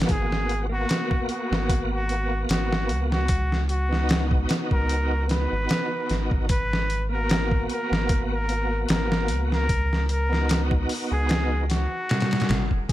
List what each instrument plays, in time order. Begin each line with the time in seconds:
Already playing: tonewheel organ A#3 B3 F#4
0.02 snare
0.09 sub bass G#1, muted trumpet G#4, kick, closed hi-hat
0.32 snare
0.49 closed hi-hat
0.69 tonewheel organ A#3 B3, muted trumpet F#4
0.74 tonewheel organ F#4
0.89 snare, closed hi-hat
1.11 kick
1.29 muted trumpet F#4, closed hi-hat
1.51 sub bass G#1, snare
1.69 kick, closed hi-hat
1.93 muted trumpet F#4
2.07 tonewheel organ A#3 B3, closed hi-hat
2.12 tonewheel organ F#4
2.49 sub bass G#1, muted trumpet F#4, snare, closed hi-hat
2.73 snare
2.89 sub bass C#2, closed hi-hat
3.12 muted trumpet F#4, snare
3.28 kick, closed hi-hat
3.52 snare
3.69 muted trumpet F#4, closed hi-hat
3.89 tonewheel organ B3 D#4, snare
3.94 tonewheel organ F#4
4.09 snare, closed hi-hat
4.31 kick
4.49 snare, closed hi-hat
4.71 sub bass C#2, muted trumpet A#4, kick
4.89 closed hi-hat
5.27 tonewheel organ B3 D#4, snare, closed hi-hat
5.31 tonewheel organ F#4, muted trumpet B4
5.52 sub bass G#1
5.69 snare, closed hi-hat
6.09 sub bass G#1, snare, closed hi-hat
6.31 kick
6.49 muted trumpet B4, kick, closed hi-hat
6.73 snare
6.90 closed hi-hat
7.09 tonewheel organ A#3 B3, muted trumpet A#4
7.14 tonewheel organ F#4
7.29 snare, closed hi-hat
7.51 kick
7.70 muted trumpet A#4, closed hi-hat
7.91 sub bass G#1, snare
8.09 kick, closed hi-hat
8.33 muted trumpet A#4
8.47 tonewheel organ A#3 B3, closed hi-hat
8.52 tonewheel organ F#4
8.89 sub bass G#1, muted trumpet A#4, snare, closed hi-hat
9.12 snare
9.28 sub bass C#2, closed hi-hat
9.52 muted trumpet A#4, snare
9.69 kick, closed hi-hat
9.93 snare
10.09 muted trumpet A#4, closed hi-hat
10.29 tonewheel organ B3 D#4, snare
10.34 tonewheel organ F#4
10.49 snare, closed hi-hat
10.71 kick
10.89 open hi-hat
11.11 sub bass C#2, muted trumpet G#4
11.29 snare, closed hi-hat
11.70 muted trumpet F#4, snare, closed hi-hat
12.09 snare, closed hi-hat
12.20 snare, closed hi-hat
12.31 snare, closed hi-hat
12.40 snare, closed hi-hat
12.49 sub bass G#1, snare, closed hi-hat
12.71 kick
12.89 kick